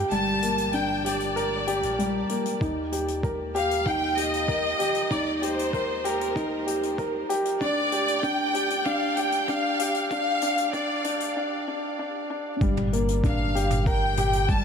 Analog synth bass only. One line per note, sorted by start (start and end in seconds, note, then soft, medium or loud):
0.11 1.83 G1 loud
1.83 2.24 A#1 medium
2.61 4.74 D#2 loud
4.80 5.04 D#1 medium
5.11 7.24 D#2 loud
7.61 9.74 D2 loud
9.80 10.04 D1 medium
10.11 11.36 D2 loud
12.61 14.64 G1 loud